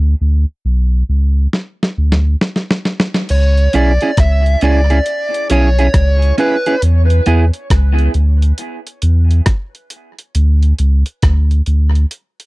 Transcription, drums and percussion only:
1.53 snare medium
1.83 snare medium
2.12 snare medium
2.41 snare medium
2.56 snare medium
2.71 snare medium
2.85 snare medium
3.00 snare medium
3.14 snare medium
3.29 closed hi-hat loud
3.29 crash medium
3.57 closed hi-hat soft
3.73 closed hi-hat medium
4.01 closed hi-hat medium
4.17 kick loud
4.17 cross-stick loud
4.17 closed hi-hat medium
4.46 closed hi-hat medium
4.61 closed hi-hat medium
4.90 closed hi-hat medium
5.06 closed hi-hat medium
5.34 closed hi-hat medium
5.50 closed hi-hat medium
5.79 closed hi-hat medium
5.94 kick loud
5.94 cross-stick loud
5.94 closed hi-hat medium
6.22 closed hi-hat medium
6.38 closed hi-hat medium
6.66 closed hi-hat medium
6.82 closed hi-hat loud
7.10 closed hi-hat medium
7.26 closed hi-hat medium
7.53 closed hi-hat medium
7.70 kick medium
7.70 cross-stick loud
7.70 closed hi-hat medium
7.99 closed hi-hat medium
8.14 closed hi-hat medium
8.42 closed hi-hat medium
8.58 closed hi-hat medium
8.87 closed hi-hat medium
9.02 closed hi-hat medium
9.31 closed hi-hat medium
9.46 kick loud
9.46 cross-stick loud
9.46 closed hi-hat loud
9.75 closed hi-hat medium
9.90 closed hi-hat medium
10.19 closed hi-hat medium
10.35 closed hi-hat loud
10.63 closed hi-hat soft
10.79 closed hi-hat medium
11.06 closed hi-hat medium
11.22 kick loud
11.22 cross-stick loud
11.22 closed hi-hat medium
11.51 closed hi-hat medium
11.66 closed hi-hat medium
11.95 closed hi-hat soft
12.11 closed hi-hat medium
12.40 closed hi-hat medium

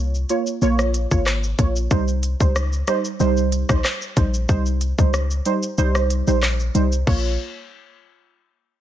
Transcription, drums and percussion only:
0.15 shaker medium
0.29 closed hi-hat medium
0.29 shaker medium
0.47 shaker medium
0.62 shaker medium
0.79 cross-stick medium
0.79 shaker medium
0.94 closed hi-hat medium
0.94 shaker medium
1.11 kick medium
1.11 shaker medium
1.26 cross-stick medium
1.26 clap medium
1.26 shaker medium
1.43 shaker medium
1.59 kick medium
1.59 closed hi-hat medium
1.59 shaker medium
1.76 shaker medium
1.91 kick loud
1.91 shaker medium
2.08 shaker medium
2.23 closed hi-hat medium
2.23 shaker medium
2.40 kick medium
2.40 shaker medium
2.56 cross-stick medium
2.56 shaker medium
2.73 shaker medium
2.87 cross-stick medium
2.87 closed hi-hat medium
2.87 shaker medium
3.05 shaker medium
3.20 shaker medium
3.37 shaker medium
3.52 closed hi-hat medium
3.52 shaker medium
3.69 kick medium
3.69 cross-stick loud
3.69 shaker medium
3.85 cross-stick medium
3.85 clap medium
3.85 shaker medium
4.02 shaker medium
4.17 kick medium
4.17 closed hi-hat medium
4.17 shaker medium
4.34 shaker medium
4.49 kick loud
4.49 shaker medium
4.66 shaker medium
4.81 closed hi-hat medium
4.81 shaker medium
4.99 kick medium
4.99 shaker medium
5.14 cross-stick medium
5.14 shaker medium
5.31 shaker medium
5.46 closed hi-hat medium
5.46 shaker medium
5.63 shaker medium
5.78 shaker medium
5.95 cross-stick medium
5.95 shaker medium
6.10 closed hi-hat medium
6.10 shaker medium
6.27 shaker medium
6.43 cross-stick medium
6.43 clap medium
6.43 shaker medium
6.60 shaker medium
6.75 closed hi-hat medium
6.75 shaker medium
6.92 shaker medium
7.07 kick loud
7.07 crash medium

